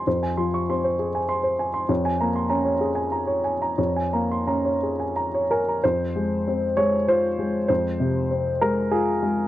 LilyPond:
<<
  \new Staff \with { instrumentName = "Grand piano" } { \time 3/4 \key f \minor \tempo 4 = 97 << { <c'' c'''>16 aes''16 c'''16 des'''16 c'''16 c''16 aes'16 aes''16 c'''16 c''16 aes''16 c'''16 | des''16 aes''16 bes''16 c'''16 bes''16 des''16 aes'16 aes''16 bes''16 des''16 aes''16 bes''16 | des''16 aes''16 bes''16 c'''16 bes''16 des''16 aes'16 aes''16 bes''16 des''16 aes''16 bes''16 | r2. |
r2. | } \\ { r2. | r2. | r2 r8 bes'8 | c''4. des''8 c''4 |
c''4. bes'8 aes'8 r8 | } >> }
  \new Staff \with { instrumentName = "Grand piano" } { \clef bass \time 3/4 \key f \minor f,8 f8 c'4 r4 | f,8 bes8 des'4 r4 | f,8 bes8 des'4 r4 | f,8 aes8 c'8 aes8 f'8 aes8 |
f,8 c8 c'8 aes8 f'8 aes8 | }
>>